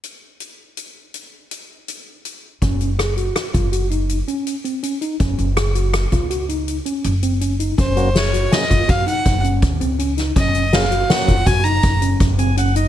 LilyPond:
<<
  \new Staff \with { instrumentName = "Violin" } { \time 7/4 \key ges \lydian \tempo 4 = 163 r1. r4 | r1. r4 | r1. r4 | c''4 des''4 ees''4 f''8 ges''4 r2 r8 |
ees''4 f''4 ges''4 aes''8 bes''4 r2 r8 | }
  \new Staff \with { instrumentName = "Tine electric piano" } { \time 7/4 \key ges \lydian r1. r4 | des'4 aes'8 ges'4 f'8 ges'8 ees'4 des'4 c'8 des'8 ees'8 | des'4 aes'8 ges'4 f'8 ges'8 ees'4 des'4 c'8 des'8 ees'8 | des'4 aes'8 ges'4 f'8 ges'8 ees'4 des'4 c'8 des'8 ees'8 |
des'4 aes'8 ges'4 f'8 ges'8 ees'4 des'4 c'8 des'8 ees'8 | }
  \new Staff \with { instrumentName = "Tonewheel organ" } { \time 7/4 \key ges \lydian r1. r4 | r1. r4 | r1. r4 | r8 <ges bes des' ges'>8 r4 <ges bes des' aes'>8 r1 r8 |
r4 <ges bes des' aes'>8 r8 <ges bes des' ges'>8 r2. aes''8 ges''8 ees''8 | }
  \new Staff \with { instrumentName = "Upright bass" } { \clef bass \time 7/4 \key ges \lydian r1. r4 | ges,,2 r8 ges,,2 r2 r8 | ges,,8 ges,,2 des,2 r8 ges,,2 | ges,,2 r8 ges,,16 r16 ges,8 r8 ges,,4 ees,8 des,4. |
ges,,2 r8 ges,,8 ges,,4 ges,,4 ges,,2 | }
  \new DrumStaff \with { instrumentName = "Drums" } \drummode { \time 7/4 hh4 hh4 hh4 hh4 hh4 hh4 hh4 | <hh bd>8 hh8 <hh ss>8 hh8 <hh ss>8 <hh bd>8 hh8 hh8 hh8 hh8 hh8 hh8 hh8 hh8 | <hh bd>8 hh8 <hh ss>8 hh8 <hh ss>8 <hh bd>8 hh8 hh8 hh8 hh8 hh8 hh8 hh8 hh8 | <hh bd>8 hh8 <hh sn>8 hh8 <hh sn>8 <hh bd>8 <hh bd>8 hh8 <hh bd>8 hh8 <hh bd>8 hh8 hh8 <hh sn>8 |
<hh bd>8 hh8 <hh sn>8 hh8 <hh sn>8 <hh bd>8 <hh bd>8 hh8 <hh bd>8 hh8 <hh bd>8 hh8 hh8 hh8 | }
>>